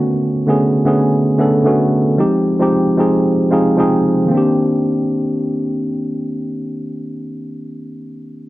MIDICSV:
0, 0, Header, 1, 2, 480
1, 0, Start_track
1, 0, Key_signature, -3, "minor"
1, 0, Tempo, 530973
1, 54, Time_signature, 4, 2, 24, 8
1, 7678, End_track
2, 0, Start_track
2, 0, Title_t, "Tine electric piano"
2, 0, Program_c, 0, 4
2, 0, Control_c, 0, 64, 127
2, 0, Note_on_c, 0, 50, 84
2, 0, Note_on_c, 0, 57, 78
2, 0, Note_on_c, 0, 59, 81
2, 0, Note_on_c, 0, 61, 77
2, 0, Note_on_c, 0, 66, 95
2, 290, Note_off_c, 0, 50, 0
2, 293, Note_off_c, 0, 57, 0
2, 297, Note_off_c, 0, 59, 0
2, 300, Note_off_c, 0, 61, 0
2, 303, Note_off_c, 0, 66, 0
2, 424, Note_on_c, 0, 50, 82
2, 431, Note_on_c, 0, 57, 74
2, 438, Note_on_c, 0, 59, 80
2, 445, Note_on_c, 0, 61, 77
2, 451, Note_on_c, 0, 68, 92
2, 709, Note_off_c, 0, 50, 0
2, 712, Note_off_c, 0, 57, 0
2, 716, Note_off_c, 0, 59, 0
2, 719, Note_off_c, 0, 61, 0
2, 723, Note_off_c, 0, 68, 0
2, 765, Note_on_c, 0, 50, 85
2, 772, Note_on_c, 0, 57, 76
2, 780, Note_on_c, 0, 59, 77
2, 787, Note_on_c, 0, 61, 77
2, 793, Note_on_c, 0, 68, 89
2, 1169, Note_off_c, 0, 50, 0
2, 1173, Note_off_c, 0, 57, 0
2, 1176, Note_off_c, 0, 59, 0
2, 1180, Note_off_c, 0, 61, 0
2, 1183, Note_off_c, 0, 68, 0
2, 1247, Note_on_c, 0, 50, 81
2, 1255, Note_on_c, 0, 57, 77
2, 1261, Note_on_c, 0, 59, 77
2, 1268, Note_on_c, 0, 61, 74
2, 1275, Note_on_c, 0, 69, 91
2, 1450, Note_off_c, 0, 50, 0
2, 1454, Note_off_c, 0, 57, 0
2, 1457, Note_off_c, 0, 59, 0
2, 1461, Note_off_c, 0, 61, 0
2, 1464, Note_off_c, 0, 69, 0
2, 1486, Note_on_c, 0, 50, 87
2, 1494, Note_on_c, 0, 57, 78
2, 1501, Note_on_c, 0, 59, 77
2, 1507, Note_on_c, 0, 61, 79
2, 1514, Note_on_c, 0, 66, 91
2, 1889, Note_off_c, 0, 50, 0
2, 1893, Note_off_c, 0, 57, 0
2, 1897, Note_off_c, 0, 59, 0
2, 1900, Note_off_c, 0, 61, 0
2, 1904, Note_off_c, 0, 66, 0
2, 1966, Note_on_c, 0, 53, 79
2, 1973, Note_on_c, 0, 56, 76
2, 1980, Note_on_c, 0, 60, 78
2, 1986, Note_on_c, 0, 63, 75
2, 1987, Control_c, 0, 64, 0
2, 1993, Note_on_c, 0, 67, 90
2, 2125, Control_c, 0, 64, 127
2, 2266, Note_off_c, 0, 53, 0
2, 2269, Note_off_c, 0, 56, 0
2, 2273, Note_off_c, 0, 60, 0
2, 2276, Note_off_c, 0, 63, 0
2, 2279, Note_off_c, 0, 67, 0
2, 2344, Note_on_c, 0, 53, 85
2, 2351, Note_on_c, 0, 56, 79
2, 2357, Note_on_c, 0, 60, 77
2, 2364, Note_on_c, 0, 63, 78
2, 2371, Note_on_c, 0, 67, 92
2, 2629, Note_off_c, 0, 53, 0
2, 2633, Note_off_c, 0, 56, 0
2, 2636, Note_off_c, 0, 60, 0
2, 2639, Note_off_c, 0, 63, 0
2, 2643, Note_off_c, 0, 67, 0
2, 2688, Note_on_c, 0, 53, 81
2, 2694, Note_on_c, 0, 56, 73
2, 2701, Note_on_c, 0, 60, 75
2, 2707, Note_on_c, 0, 63, 77
2, 2715, Note_on_c, 0, 68, 89
2, 3090, Note_off_c, 0, 53, 0
2, 3093, Note_off_c, 0, 56, 0
2, 3097, Note_off_c, 0, 60, 0
2, 3100, Note_off_c, 0, 63, 0
2, 3104, Note_off_c, 0, 68, 0
2, 3166, Note_on_c, 0, 53, 81
2, 3173, Note_on_c, 0, 56, 72
2, 3180, Note_on_c, 0, 60, 74
2, 3181, Note_on_c, 0, 77, 69
2, 3186, Note_on_c, 0, 63, 77
2, 3194, Note_on_c, 0, 68, 89
2, 3370, Note_off_c, 0, 53, 0
2, 3373, Note_off_c, 0, 56, 0
2, 3377, Note_off_c, 0, 60, 0
2, 3380, Note_off_c, 0, 63, 0
2, 3384, Note_off_c, 0, 68, 0
2, 3401, Note_off_c, 0, 77, 0
2, 3406, Note_on_c, 0, 53, 83
2, 3413, Note_on_c, 0, 56, 77
2, 3420, Note_on_c, 0, 60, 73
2, 3421, Note_on_c, 0, 79, 69
2, 3428, Note_on_c, 0, 63, 74
2, 3433, Note_on_c, 0, 68, 91
2, 3810, Note_off_c, 0, 53, 0
2, 3813, Note_off_c, 0, 56, 0
2, 3817, Note_off_c, 0, 60, 0
2, 3820, Note_off_c, 0, 63, 0
2, 3823, Note_off_c, 0, 68, 0
2, 3844, Note_on_c, 0, 51, 78
2, 3864, Note_off_c, 0, 79, 0
2, 3872, Note_on_c, 0, 58, 75
2, 3900, Note_on_c, 0, 60, 74
2, 3907, Control_c, 0, 64, 0
2, 3926, Note_on_c, 0, 62, 72
2, 3955, Note_on_c, 0, 67, 89
2, 4038, Control_c, 0, 64, 127
2, 7678, Note_off_c, 0, 51, 0
2, 7678, Note_off_c, 0, 58, 0
2, 7678, Note_off_c, 0, 60, 0
2, 7678, Note_off_c, 0, 62, 0
2, 7678, Note_off_c, 0, 67, 0
2, 7678, End_track
0, 0, End_of_file